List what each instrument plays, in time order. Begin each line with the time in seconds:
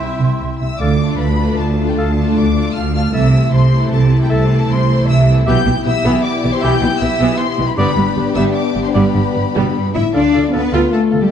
Already playing: french horn section G3 C4, viola section E4, violin section E5, cor anglais E5, clarinet G5, flute section C6
0.01 cello section C3
0.20 double bass section C2, cello section C3
0.41 double bass section C2, cello section C3
0.58 double bass section C2, cello section C3, flute section E5, violin section E6
0.77 cello section D2, double bass section D2, french horn section A3 F4, clarinet A4, flute section D5, cor anglais F5, violin section D6
0.99 viola section A3 D4, violin section F4 A4
1.18 cello section D2, double bass section D2, flute section B4, violin section B5
1.38 viola section A3 D4, violin section F4 A4
1.58 cello section D2, double bass section D2, flute section A4, violin section A5
1.77 viola section A3 D4, violin section F4 A4
1.87 flute section G4, violin section G5
1.97 cello section D2, double bass section D2, flute section A4, clarinet A4, cor anglais F5, violin section A5
2.16 viola section A3 D4, violin section F4 A4
2.36 cello section D2, double bass section D2, flute section D5, violin section D6
2.56 viola section A3 D4, violin section F4 A4
2.74 double bass section D2, cello section D2, flute section F5, violin section F6
2.93 viola section A3 D4, violin section F4 A4 F6, flute section F5
3.13 double bass section C2, cello section C3, viola section E3 A3, french horn section A3 E4, violin section E4 A4 E6, clarinet A4, cor anglais E5, flute section E5
3.32 viola section E3 A3, violin section E4 A4
3.52 double bass section C2, cello section C3, flute section C5, violin section C6
3.71 viola section E3 A3, violin section E4 A4
3.92 double bass section C2, cello section C3, flute section A4, violin section A5
4.10 viola section E3 A3, violin section E4 A4
4.19 flute section G4, violin section G5
4.29 double bass section C2, cello section C3, flute section A4, clarinet A4, cor anglais E5, violin section A5
4.50 viola section E3 A3, violin section E4 A4
4.69 double bass section C2, cello section C3, flute section C5, violin section C6
4.88 viola section E3 A3, violin section E4 A4
5.06 double bass section C2, cello section C3, flute section E5, violin section E6
5.28 viola section E3 A3, violin section E4 A4
5.44 double bass section B1, cello section B2, viola section E3 B3, french horn section B3 E4, clarinet G4, cor anglais E5, flute section G5, violin section G6
5.48 violin section E4 G4
5.66 double bass section B1, cello section B2, viola section E3 B3
5.84 double bass section B1, cello section B2, viola section E3 B3, flute section E5, violin section E6
6.04 double bass section B1, cello section B2, viola section E3 B3
6.22 flute section D5, violin section D6
6.43 double bass section B1, cello section B2, viola section E3 B3
6.52 flute section C5, violin section C6
6.61 double bass section B1, cello section B2, viola section E3 B3, clarinet G4, cor anglais E5, flute section G5, violin section G6
6.81 double bass section B1, cello section B2, viola section E3 B3
6.99 double bass section B1, cello section B2, viola section E3 B3, flute section E5, violin section E6
7.19 double bass section B1, cello section B2, viola section E3 B3
7.38 flute section C5, violin section C6
7.58 double bass section B1, cello section B2, viola section E3 B3
7.66 flute section B4, violin section B5
7.76 double bass section G1, cello section G2, viola section G3 B3, french horn section B3 D4, violin section D4 G4 B5, clarinet G4, flute section B4, cor anglais D5
7.97 double bass section G1, cello section G2, viola section G3 B3
8.16 double bass section G1, cello section G2, viola section G3 B3
8.34 double bass section G1, cello section G2, viola section G3 B3, flute section E5, violin section E6
8.54 flute section D5, violin section D6
8.74 double bass section G1, cello section G2, viola section G3 B3
8.83 flute section C5, violin section C6
8.93 double bass section G1, cello section G2, viola section G3 B3, clarinet G4, flute section B4, cor anglais D5, violin section B5
9.14 double bass section G1, cello section G2, viola section G3 B3
9.34 double bass section G1, cello section G2, viola section G3 B3
9.55 double bass section G1, cello section B2, viola section G3 B3
9.75 cello section G2
9.94 double bass section G1, cello section A2 E4, viola section G3 B3, french horn section E4, violin section E5
10.13 double bass section D2, cello section D4, french horn section D4, viola section F4 A4, clarinet A4, violin section D5, cor anglais F5, flute section A5
10.33 double bass section D2, viola section F4, clarinet A4, cor anglais F5, flute section A5
10.51 double bass section D2, french horn section B3, cello section B3, viola section F4, clarinet A4, violin section B4, cor anglais F5, flute section A5
10.72 double bass section D2, viola section F4, clarinet A4, cor anglais F5, flute section A5
10.92 french horn section A3, cello section A3, violin section A4, clarinet A4, cor anglais F5, flute section A5
11.11 double bass section D2, viola section F4, clarinet A4, cor anglais F5, flute section A5
11.21 cello section G3, french horn section G3, violin section G4